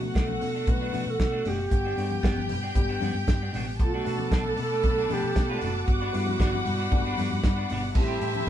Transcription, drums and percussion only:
0.01 high conga
0.14 kick, snare, closed hi-hat, muted conga
0.28 high conga
0.41 open hi-hat, low conga
0.67 kick, closed hi-hat, muted conga, low conga
0.93 open hi-hat, muted conga, high conga
1.07 high conga
1.20 kick, snare, closed hi-hat, muted conga
1.45 open hi-hat, muted conga, low conga
1.71 kick, closed hi-hat, muted conga
1.98 open hi-hat
2.10 high conga
2.23 kick, snare, closed hi-hat
2.36 high conga
2.49 open hi-hat, muted conga, low conga
2.75 kick, closed hi-hat, muted conga, low conga
3.01 open hi-hat, muted conga, high conga
3.14 high conga
3.27 kick, snare, closed hi-hat, muted conga
3.53 open hi-hat, low conga
3.80 kick, closed hi-hat, muted conga
4.05 open hi-hat, muted conga
4.18 high conga
4.30 kick, snare, closed hi-hat, muted conga
4.44 high conga
4.57 open hi-hat, low conga
4.83 kick, closed hi-hat, low conga
5.09 open hi-hat, muted conga, high conga
5.23 high conga
5.36 kick, snare, closed hi-hat, muted conga
5.61 open hi-hat, muted conga, low conga
5.88 kick, closed hi-hat, muted conga
6.13 open hi-hat, muted conga
6.26 high conga
6.40 kick, snare, closed hi-hat
6.53 high conga
6.66 open hi-hat, muted conga, low conga
6.92 kick, closed hi-hat, muted conga, low conga
7.17 open hi-hat, muted conga, high conga
7.31 high conga
7.44 kick, snare, closed hi-hat, muted conga
7.70 open hi-hat, muted conga, low conga
7.95 kick, crash, muted conga
8.21 open hi-hat, muted conga
8.35 high conga

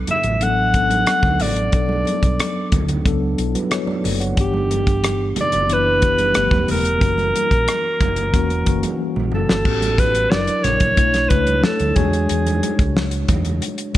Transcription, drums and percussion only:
0.07 closed hi-hat, muted conga, high conga, low conga
0.23 closed hi-hat, low conga
0.41 closed hi-hat, muted conga
0.74 kick, closed hi-hat, muted conga
0.90 closed hi-hat, high conga
1.07 cross-stick, closed hi-hat
1.23 kick, high conga
1.40 open hi-hat, low conga
1.56 closed hi-hat
1.72 kick, closed hi-hat
1.89 high conga
2.05 closed hi-hat, high conga
2.23 kick, closed hi-hat
2.39 cross-stick, closed hi-hat, muted conga, high conga
2.72 kick, closed hi-hat, high conga, low conga
2.88 closed hi-hat, low conga
3.06 kick, closed hi-hat
3.38 closed hi-hat, muted conga
3.55 closed hi-hat, high conga
3.71 cross-stick, closed hi-hat
3.87 high conga
4.04 open hi-hat, low conga
4.21 closed hi-hat
4.37 kick, closed hi-hat, muted conga
4.54 high conga
4.71 closed hi-hat, muted conga, high conga
4.87 kick, closed hi-hat
5.03 cross-stick, closed hi-hat, high conga
5.36 closed hi-hat, muted conga, high conga, low conga
5.52 closed hi-hat, low conga
5.70 closed hi-hat, muted conga
6.02 kick, closed hi-hat
6.18 closed hi-hat, high conga
6.34 cross-stick, closed hi-hat
6.51 kick, high conga
6.68 open hi-hat, muted conga, low conga
6.85 closed hi-hat
7.01 kick, closed hi-hat, muted conga
7.18 closed hi-hat, high conga
7.35 closed hi-hat, high conga
7.51 kick, closed hi-hat
7.68 cross-stick, closed hi-hat, muted conga, high conga
8.00 kick, closed hi-hat, muted conga, high conga, low conga
8.16 closed hi-hat, low conga
8.34 kick, closed hi-hat, muted conga
8.50 closed hi-hat
8.66 kick, closed hi-hat, muted conga
8.83 closed hi-hat, high conga
9.16 high conga
9.32 muted conga, low conga
9.49 snare
9.65 kick, crash, muted conga
9.82 closed hi-hat, high conga
9.98 kick, closed hi-hat, high conga
10.15 closed hi-hat
10.32 snare
10.47 closed hi-hat
10.64 snare, closed hi-hat, muted conga, high conga, low conga
10.80 kick, closed hi-hat, low conga
10.97 kick, closed hi-hat, muted conga
11.14 snare, closed hi-hat
11.30 kick, closed hi-hat, muted conga
11.47 closed hi-hat, high conga
11.64 snare
11.79 closed hi-hat, high conga
11.96 kick, closed hi-hat, muted conga, low conga
12.13 closed hi-hat
12.29 closed hi-hat, muted conga
12.47 closed hi-hat, high conga
12.63 closed hi-hat, muted conga, high conga
12.79 kick, closed hi-hat
12.96 snare, muted conga
13.11 closed hi-hat
13.28 kick, closed hi-hat, muted conga, high conga, low conga
13.45 closed hi-hat, low conga
13.61 closed hi-hat, muted conga
13.78 closed hi-hat
13.94 closed hi-hat, muted conga

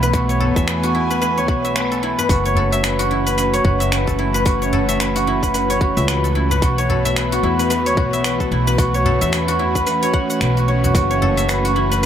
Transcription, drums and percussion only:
0.03 cabasa
0.14 kick, cabasa
0.30 cabasa
0.41 udu
0.56 kick, cabasa
0.68 finger snap, cabasa
0.84 cabasa
1.11 cabasa
1.22 cabasa
1.38 cabasa
1.48 kick
1.65 cabasa
1.76 finger snap, cabasa
1.92 cabasa
2.19 udu, cabasa
2.29 kick, open hi-hat, cabasa
2.46 cabasa
2.55 udu
2.73 open hi-hat, cabasa
2.84 finger snap, open hi-hat, cabasa
3.00 open hi-hat, cabasa
3.27 open hi-hat, cabasa
3.38 open hi-hat, cabasa
3.54 open hi-hat, cabasa
3.65 kick, udu
3.81 open hi-hat, cabasa
3.92 finger snap, open hi-hat, cabasa
4.08 kick, cabasa
4.35 cabasa
4.46 kick, open hi-hat, cabasa
4.63 cabasa
4.73 udu
4.89 open hi-hat, cabasa
5.00 finger snap, open hi-hat, cabasa
5.16 open hi-hat, cabasa
5.43 kick, open hi-hat, cabasa
5.54 open hi-hat, cabasa
5.70 open hi-hat, cabasa
5.81 kick
5.97 open hi-hat, cabasa
6.08 finger snap, open hi-hat, cabasa
6.25 cabasa
6.51 udu, cabasa
6.62 kick, open hi-hat, cabasa
6.79 cabasa
6.89 udu
7.05 open hi-hat, cabasa
7.16 finger snap, open hi-hat, cabasa
7.32 open hi-hat, cabasa
7.59 open hi-hat, cabasa
7.71 open hi-hat, cabasa
7.86 open hi-hat, cabasa
7.97 kick, udu
8.13 open hi-hat, cabasa
8.24 finger snap, open hi-hat, cabasa
8.40 kick, cabasa
8.68 cabasa
8.78 kick, open hi-hat, cabasa
8.95 cabasa
9.05 udu
9.21 open hi-hat, cabasa
9.33 finger snap, open hi-hat, cabasa
9.48 open hi-hat, cabasa
9.75 kick, open hi-hat, cabasa
9.86 open hi-hat, cabasa
10.03 open hi-hat, cabasa
10.14 kick
10.30 open hi-hat, cabasa
10.41 finger snap, open hi-hat, cabasa
10.57 cabasa
10.84 udu, cabasa
10.95 kick, open hi-hat, cabasa
11.11 cabasa
11.22 udu
11.38 open hi-hat, cabasa
11.49 finger snap, open hi-hat, cabasa
11.65 open hi-hat, cabasa
11.92 open hi-hat, cabasa

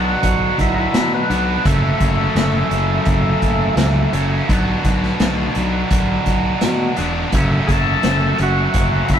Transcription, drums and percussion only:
0.23 kick, closed hi-hat
0.59 kick, closed hi-hat
0.94 snare, closed hi-hat
1.31 closed hi-hat
1.65 kick, closed hi-hat
2.00 kick, closed hi-hat
2.36 snare, closed hi-hat
2.71 closed hi-hat
3.05 kick, closed hi-hat
3.42 kick, closed hi-hat
3.77 snare, closed hi-hat
4.13 closed hi-hat
4.49 kick, closed hi-hat
4.85 kick, closed hi-hat
5.03 snare
5.20 snare, closed hi-hat
5.55 closed hi-hat
5.91 kick, closed hi-hat
6.26 kick, closed hi-hat
6.61 snare, closed hi-hat
6.97 closed hi-hat
7.32 kick, closed hi-hat
7.68 kick, closed hi-hat
8.03 snare, closed hi-hat
8.39 closed hi-hat
8.74 kick, closed hi-hat
9.08 kick, closed hi-hat

